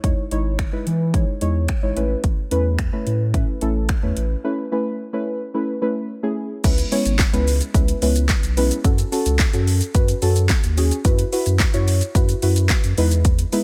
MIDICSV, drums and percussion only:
0, 0, Header, 1, 2, 480
1, 0, Start_track
1, 0, Tempo, 550459
1, 34, Time_signature, 4, 2, 24, 8
1, 11890, End_track
2, 0, Start_track
2, 0, Title_t, "Drums"
2, 33, Note_on_c, 9, 36, 105
2, 33, Note_on_c, 9, 42, 73
2, 120, Note_off_c, 9, 36, 0
2, 121, Note_off_c, 9, 42, 0
2, 274, Note_on_c, 9, 42, 52
2, 361, Note_off_c, 9, 42, 0
2, 513, Note_on_c, 9, 26, 114
2, 514, Note_on_c, 9, 36, 97
2, 514, Note_on_c, 9, 42, 67
2, 600, Note_off_c, 9, 26, 0
2, 601, Note_off_c, 9, 36, 0
2, 601, Note_off_c, 9, 42, 0
2, 756, Note_on_c, 9, 42, 55
2, 843, Note_off_c, 9, 42, 0
2, 994, Note_on_c, 9, 36, 116
2, 994, Note_on_c, 9, 42, 64
2, 1081, Note_off_c, 9, 36, 0
2, 1081, Note_off_c, 9, 42, 0
2, 1232, Note_on_c, 9, 42, 58
2, 1319, Note_off_c, 9, 42, 0
2, 1469, Note_on_c, 9, 42, 67
2, 1471, Note_on_c, 9, 26, 102
2, 1475, Note_on_c, 9, 36, 108
2, 1556, Note_off_c, 9, 42, 0
2, 1558, Note_off_c, 9, 26, 0
2, 1562, Note_off_c, 9, 36, 0
2, 1714, Note_on_c, 9, 42, 55
2, 1801, Note_off_c, 9, 42, 0
2, 1950, Note_on_c, 9, 42, 78
2, 1952, Note_on_c, 9, 36, 110
2, 2038, Note_off_c, 9, 42, 0
2, 2039, Note_off_c, 9, 36, 0
2, 2192, Note_on_c, 9, 42, 54
2, 2279, Note_off_c, 9, 42, 0
2, 2429, Note_on_c, 9, 26, 113
2, 2429, Note_on_c, 9, 42, 70
2, 2432, Note_on_c, 9, 36, 104
2, 2516, Note_off_c, 9, 26, 0
2, 2516, Note_off_c, 9, 42, 0
2, 2520, Note_off_c, 9, 36, 0
2, 2674, Note_on_c, 9, 42, 55
2, 2761, Note_off_c, 9, 42, 0
2, 2913, Note_on_c, 9, 36, 114
2, 2914, Note_on_c, 9, 42, 64
2, 3000, Note_off_c, 9, 36, 0
2, 3001, Note_off_c, 9, 42, 0
2, 3151, Note_on_c, 9, 42, 58
2, 3239, Note_off_c, 9, 42, 0
2, 3390, Note_on_c, 9, 42, 70
2, 3392, Note_on_c, 9, 26, 99
2, 3395, Note_on_c, 9, 36, 110
2, 3477, Note_off_c, 9, 42, 0
2, 3480, Note_off_c, 9, 26, 0
2, 3482, Note_off_c, 9, 36, 0
2, 3633, Note_on_c, 9, 42, 55
2, 3720, Note_off_c, 9, 42, 0
2, 5792, Note_on_c, 9, 36, 119
2, 5793, Note_on_c, 9, 42, 81
2, 5793, Note_on_c, 9, 49, 105
2, 5793, Note_on_c, 9, 82, 81
2, 5880, Note_off_c, 9, 36, 0
2, 5880, Note_off_c, 9, 42, 0
2, 5880, Note_off_c, 9, 49, 0
2, 5880, Note_off_c, 9, 82, 0
2, 5912, Note_on_c, 9, 42, 57
2, 5912, Note_on_c, 9, 82, 57
2, 6000, Note_off_c, 9, 42, 0
2, 6000, Note_off_c, 9, 82, 0
2, 6033, Note_on_c, 9, 46, 81
2, 6033, Note_on_c, 9, 82, 57
2, 6120, Note_off_c, 9, 46, 0
2, 6120, Note_off_c, 9, 82, 0
2, 6152, Note_on_c, 9, 42, 59
2, 6152, Note_on_c, 9, 82, 84
2, 6240, Note_off_c, 9, 42, 0
2, 6240, Note_off_c, 9, 82, 0
2, 6267, Note_on_c, 9, 38, 94
2, 6273, Note_on_c, 9, 39, 121
2, 6273, Note_on_c, 9, 42, 74
2, 6273, Note_on_c, 9, 82, 73
2, 6274, Note_on_c, 9, 36, 108
2, 6355, Note_off_c, 9, 38, 0
2, 6360, Note_off_c, 9, 39, 0
2, 6361, Note_off_c, 9, 36, 0
2, 6361, Note_off_c, 9, 42, 0
2, 6361, Note_off_c, 9, 82, 0
2, 6397, Note_on_c, 9, 42, 54
2, 6397, Note_on_c, 9, 82, 55
2, 6484, Note_off_c, 9, 42, 0
2, 6484, Note_off_c, 9, 82, 0
2, 6519, Note_on_c, 9, 46, 80
2, 6519, Note_on_c, 9, 82, 59
2, 6606, Note_off_c, 9, 46, 0
2, 6606, Note_off_c, 9, 82, 0
2, 6634, Note_on_c, 9, 42, 54
2, 6634, Note_on_c, 9, 82, 73
2, 6721, Note_off_c, 9, 42, 0
2, 6721, Note_off_c, 9, 82, 0
2, 6753, Note_on_c, 9, 36, 122
2, 6756, Note_on_c, 9, 42, 71
2, 6756, Note_on_c, 9, 82, 68
2, 6840, Note_off_c, 9, 36, 0
2, 6843, Note_off_c, 9, 42, 0
2, 6843, Note_off_c, 9, 82, 0
2, 6874, Note_on_c, 9, 42, 60
2, 6874, Note_on_c, 9, 82, 62
2, 6961, Note_off_c, 9, 42, 0
2, 6961, Note_off_c, 9, 82, 0
2, 6994, Note_on_c, 9, 46, 88
2, 6994, Note_on_c, 9, 82, 61
2, 7081, Note_off_c, 9, 46, 0
2, 7081, Note_off_c, 9, 82, 0
2, 7113, Note_on_c, 9, 42, 53
2, 7113, Note_on_c, 9, 82, 77
2, 7200, Note_off_c, 9, 42, 0
2, 7200, Note_off_c, 9, 82, 0
2, 7227, Note_on_c, 9, 38, 82
2, 7230, Note_on_c, 9, 42, 74
2, 7230, Note_on_c, 9, 82, 73
2, 7233, Note_on_c, 9, 39, 107
2, 7235, Note_on_c, 9, 36, 114
2, 7314, Note_off_c, 9, 38, 0
2, 7317, Note_off_c, 9, 42, 0
2, 7317, Note_off_c, 9, 82, 0
2, 7320, Note_off_c, 9, 39, 0
2, 7322, Note_off_c, 9, 36, 0
2, 7354, Note_on_c, 9, 42, 55
2, 7354, Note_on_c, 9, 82, 55
2, 7441, Note_off_c, 9, 42, 0
2, 7441, Note_off_c, 9, 82, 0
2, 7474, Note_on_c, 9, 46, 80
2, 7474, Note_on_c, 9, 82, 60
2, 7562, Note_off_c, 9, 46, 0
2, 7562, Note_off_c, 9, 82, 0
2, 7596, Note_on_c, 9, 42, 59
2, 7596, Note_on_c, 9, 82, 87
2, 7683, Note_off_c, 9, 42, 0
2, 7683, Note_off_c, 9, 82, 0
2, 7713, Note_on_c, 9, 36, 121
2, 7714, Note_on_c, 9, 42, 80
2, 7714, Note_on_c, 9, 82, 81
2, 7800, Note_off_c, 9, 36, 0
2, 7801, Note_off_c, 9, 42, 0
2, 7801, Note_off_c, 9, 82, 0
2, 7833, Note_on_c, 9, 42, 62
2, 7833, Note_on_c, 9, 82, 58
2, 7921, Note_off_c, 9, 42, 0
2, 7921, Note_off_c, 9, 82, 0
2, 7956, Note_on_c, 9, 46, 80
2, 7956, Note_on_c, 9, 82, 57
2, 8043, Note_off_c, 9, 46, 0
2, 8043, Note_off_c, 9, 82, 0
2, 8074, Note_on_c, 9, 42, 62
2, 8074, Note_on_c, 9, 82, 81
2, 8162, Note_off_c, 9, 42, 0
2, 8162, Note_off_c, 9, 82, 0
2, 8187, Note_on_c, 9, 38, 93
2, 8193, Note_on_c, 9, 39, 120
2, 8193, Note_on_c, 9, 42, 74
2, 8193, Note_on_c, 9, 82, 72
2, 8194, Note_on_c, 9, 36, 109
2, 8274, Note_off_c, 9, 38, 0
2, 8280, Note_off_c, 9, 39, 0
2, 8280, Note_off_c, 9, 42, 0
2, 8280, Note_off_c, 9, 82, 0
2, 8281, Note_off_c, 9, 36, 0
2, 8314, Note_on_c, 9, 42, 57
2, 8314, Note_on_c, 9, 82, 55
2, 8402, Note_off_c, 9, 42, 0
2, 8402, Note_off_c, 9, 82, 0
2, 8436, Note_on_c, 9, 46, 78
2, 8436, Note_on_c, 9, 82, 60
2, 8524, Note_off_c, 9, 46, 0
2, 8524, Note_off_c, 9, 82, 0
2, 8552, Note_on_c, 9, 42, 53
2, 8552, Note_on_c, 9, 82, 77
2, 8640, Note_off_c, 9, 42, 0
2, 8640, Note_off_c, 9, 82, 0
2, 8673, Note_on_c, 9, 42, 68
2, 8673, Note_on_c, 9, 82, 68
2, 8674, Note_on_c, 9, 36, 116
2, 8760, Note_off_c, 9, 42, 0
2, 8760, Note_off_c, 9, 82, 0
2, 8761, Note_off_c, 9, 36, 0
2, 8793, Note_on_c, 9, 42, 60
2, 8793, Note_on_c, 9, 82, 59
2, 8881, Note_off_c, 9, 42, 0
2, 8881, Note_off_c, 9, 82, 0
2, 8912, Note_on_c, 9, 46, 83
2, 8912, Note_on_c, 9, 82, 59
2, 8999, Note_off_c, 9, 46, 0
2, 8999, Note_off_c, 9, 82, 0
2, 9033, Note_on_c, 9, 42, 53
2, 9033, Note_on_c, 9, 82, 73
2, 9121, Note_off_c, 9, 42, 0
2, 9121, Note_off_c, 9, 82, 0
2, 9148, Note_on_c, 9, 38, 89
2, 9151, Note_on_c, 9, 42, 74
2, 9151, Note_on_c, 9, 82, 76
2, 9153, Note_on_c, 9, 39, 106
2, 9156, Note_on_c, 9, 36, 116
2, 9235, Note_off_c, 9, 38, 0
2, 9238, Note_off_c, 9, 42, 0
2, 9238, Note_off_c, 9, 82, 0
2, 9241, Note_off_c, 9, 39, 0
2, 9243, Note_off_c, 9, 36, 0
2, 9275, Note_on_c, 9, 42, 56
2, 9275, Note_on_c, 9, 82, 54
2, 9362, Note_off_c, 9, 42, 0
2, 9362, Note_off_c, 9, 82, 0
2, 9396, Note_on_c, 9, 46, 80
2, 9396, Note_on_c, 9, 82, 61
2, 9483, Note_off_c, 9, 46, 0
2, 9483, Note_off_c, 9, 82, 0
2, 9517, Note_on_c, 9, 42, 61
2, 9517, Note_on_c, 9, 82, 84
2, 9604, Note_off_c, 9, 42, 0
2, 9604, Note_off_c, 9, 82, 0
2, 9633, Note_on_c, 9, 42, 80
2, 9633, Note_on_c, 9, 82, 77
2, 9634, Note_on_c, 9, 36, 120
2, 9721, Note_off_c, 9, 36, 0
2, 9721, Note_off_c, 9, 42, 0
2, 9721, Note_off_c, 9, 82, 0
2, 9754, Note_on_c, 9, 42, 60
2, 9754, Note_on_c, 9, 82, 60
2, 9841, Note_off_c, 9, 42, 0
2, 9841, Note_off_c, 9, 82, 0
2, 9876, Note_on_c, 9, 46, 81
2, 9876, Note_on_c, 9, 82, 57
2, 9963, Note_off_c, 9, 46, 0
2, 9963, Note_off_c, 9, 82, 0
2, 9993, Note_on_c, 9, 42, 60
2, 9993, Note_on_c, 9, 82, 87
2, 10080, Note_off_c, 9, 42, 0
2, 10080, Note_off_c, 9, 82, 0
2, 10109, Note_on_c, 9, 38, 91
2, 10115, Note_on_c, 9, 36, 109
2, 10115, Note_on_c, 9, 39, 122
2, 10115, Note_on_c, 9, 42, 73
2, 10115, Note_on_c, 9, 82, 70
2, 10196, Note_off_c, 9, 38, 0
2, 10202, Note_off_c, 9, 39, 0
2, 10202, Note_off_c, 9, 42, 0
2, 10202, Note_off_c, 9, 82, 0
2, 10203, Note_off_c, 9, 36, 0
2, 10236, Note_on_c, 9, 42, 54
2, 10236, Note_on_c, 9, 82, 54
2, 10323, Note_off_c, 9, 42, 0
2, 10323, Note_off_c, 9, 82, 0
2, 10357, Note_on_c, 9, 46, 83
2, 10357, Note_on_c, 9, 82, 61
2, 10444, Note_off_c, 9, 46, 0
2, 10444, Note_off_c, 9, 82, 0
2, 10474, Note_on_c, 9, 42, 56
2, 10474, Note_on_c, 9, 82, 79
2, 10561, Note_off_c, 9, 42, 0
2, 10561, Note_off_c, 9, 82, 0
2, 10595, Note_on_c, 9, 36, 114
2, 10596, Note_on_c, 9, 42, 68
2, 10596, Note_on_c, 9, 82, 68
2, 10683, Note_off_c, 9, 36, 0
2, 10684, Note_off_c, 9, 42, 0
2, 10684, Note_off_c, 9, 82, 0
2, 10714, Note_on_c, 9, 42, 58
2, 10714, Note_on_c, 9, 82, 61
2, 10801, Note_off_c, 9, 42, 0
2, 10801, Note_off_c, 9, 82, 0
2, 10833, Note_on_c, 9, 46, 84
2, 10833, Note_on_c, 9, 82, 61
2, 10921, Note_off_c, 9, 46, 0
2, 10921, Note_off_c, 9, 82, 0
2, 10953, Note_on_c, 9, 42, 54
2, 10953, Note_on_c, 9, 82, 73
2, 11040, Note_off_c, 9, 42, 0
2, 11040, Note_off_c, 9, 82, 0
2, 11066, Note_on_c, 9, 38, 89
2, 11069, Note_on_c, 9, 42, 71
2, 11069, Note_on_c, 9, 82, 74
2, 11072, Note_on_c, 9, 39, 104
2, 11076, Note_on_c, 9, 36, 110
2, 11153, Note_off_c, 9, 38, 0
2, 11156, Note_off_c, 9, 42, 0
2, 11156, Note_off_c, 9, 82, 0
2, 11159, Note_off_c, 9, 39, 0
2, 11163, Note_off_c, 9, 36, 0
2, 11194, Note_on_c, 9, 42, 52
2, 11194, Note_on_c, 9, 82, 53
2, 11281, Note_off_c, 9, 42, 0
2, 11281, Note_off_c, 9, 82, 0
2, 11315, Note_on_c, 9, 46, 84
2, 11315, Note_on_c, 9, 82, 61
2, 11402, Note_off_c, 9, 46, 0
2, 11402, Note_off_c, 9, 82, 0
2, 11436, Note_on_c, 9, 42, 58
2, 11436, Note_on_c, 9, 82, 85
2, 11523, Note_off_c, 9, 42, 0
2, 11523, Note_off_c, 9, 82, 0
2, 11551, Note_on_c, 9, 42, 83
2, 11551, Note_on_c, 9, 82, 83
2, 11553, Note_on_c, 9, 36, 115
2, 11639, Note_off_c, 9, 42, 0
2, 11639, Note_off_c, 9, 82, 0
2, 11640, Note_off_c, 9, 36, 0
2, 11673, Note_on_c, 9, 42, 58
2, 11673, Note_on_c, 9, 82, 57
2, 11760, Note_off_c, 9, 42, 0
2, 11760, Note_off_c, 9, 82, 0
2, 11794, Note_on_c, 9, 46, 79
2, 11794, Note_on_c, 9, 82, 59
2, 11881, Note_off_c, 9, 46, 0
2, 11881, Note_off_c, 9, 82, 0
2, 11890, End_track
0, 0, End_of_file